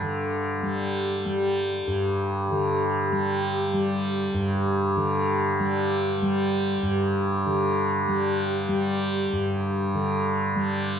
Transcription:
Already playing: G2 D3 G3
0.02 D3
0.63 G3
0.81 G4
1.25 G3
1.87 G2
2.51 D3
3.12 G3
3.74 G3
4.34 G2
4.96 D3
5.60 G3
6.22 G3
6.83 G2
7.46 D3
8.08 G3
8.69 G3
9.33 G2
9.94 D3
10.56 G3

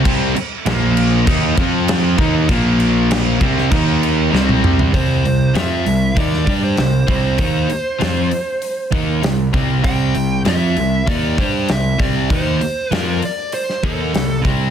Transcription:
0.05 C2 C3 G3 C4, kick, crash
0.36 muted overdriven electric guitar stroke, muted picked electric bass stroke, muted distorted electric guitar stroke, crash
0.66 A#1 A#2 F3 A#3, snare, crash
0.97 crash
1.27 D#2 D#3 A#3 D#4, kick, crash
1.57 F2 F3 C4 F4, kick, crash
1.88 snare, crash
2.18 D#2 D#3 A#3 D#4, kick, crash
2.49 A#1 A#2 F3 A#3, kick, crash
2.80 crash
3.11 snare, crash
3.41 C2 C3 G3 C4, kick, crash
3.58 snare
3.72 D#2 D#3 A#3 D#4, kick, crash
4.03 crash
4.33 C2 C3 G3 C4, snare
4.49 high tom
4.64 mid tom
4.79 floor tom
4.94 C2 C3 G3 C4 C5, kick, open hi-hat
5.24 C2 C3 G3, open hi-hat
5.55 F2 F3 C4 F4 E5, snare, open hi-hat
5.86 C2 C3 G3, open hi-hat
6.17 D#2 D#3 A#3 D#4 D5, kick, open hi-hat
6.33 snare
6.47 G2 G3 D4 G4, kick, open hi-hat
6.64 C5
6.77 C2 C3 G3, snare, open hi-hat
7.07 C2 C3 G3 C4 C5, kick, open hi-hat
7.38 D#2 D#3 A#3 D#4, kick, open hi-hat
7.69 muted distorted electric guitar stroke, muted overdriven electric guitar stroke, muted picked electric bass stroke, open hi-hat
7.99 F2 F3 C4 F4, snare, open hi-hat
8.31 open hi-hat
8.62 open hi-hat
8.92 D#2 D#3 A#3 D#4, kick, open hi-hat
9.23 C2 C3 G3, snare, open hi-hat
9.53 C2 C3 G3 C4, kick, open hi-hat
9.83 C2 C3 G3 C4 G5, kick, open hi-hat
10.15 C2 C3 G3, open hi-hat
10.45 F2 F3 C4 F4 E5, snare, open hi-hat
10.76 C2 C3 G3, open hi-hat
11.07 D#2 D#3 A#3 D#4 D5, kick, open hi-hat
11.37 G2 G3 D4 G4 C5, kick, open hi-hat
11.69 C2 C3 G3 E5, snare, open hi-hat
11.99 C2 C3 G3 C4 D5, kick, open hi-hat
12.30 D#2 D#3 A#3 D#4 C5, kick, open hi-hat
12.61 muted overdriven electric guitar stroke, muted distorted electric guitar stroke, muted picked electric bass stroke, open hi-hat
12.91 F2 F3 C4 F4 A#4, snare, open hi-hat
13.22 D5, open hi-hat
13.52 C5, open hi-hat
13.69 snare
13.83 D#2 D#3 A#3 D#4 A4, kick, open hi-hat
14.15 C2 C3 G3, snare, open hi-hat
14.45 C2 C3 G3 C4, kick, open hi-hat

